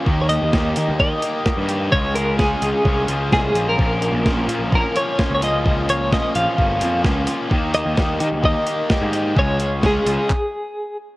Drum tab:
HH |--x---x---x---x-|--x---x---x---x-|--x---x---x---x-|--x---x---x---x-|
CP |----------------|----------------|----------------|----------------|
SD |----o-------o---|----o-------o---|----oo------o---|----oo------o---|
BD |o---o---o---o---|o---o---o---o---|o---o---o---o---|o---o---o---o---|

HH |--x---x---x---x-|--x---x---------|
CP |----------------|--------x-------|
SD |----o-------o---|----o-----------|
BD |o---o---o---o---|o---o---o-------|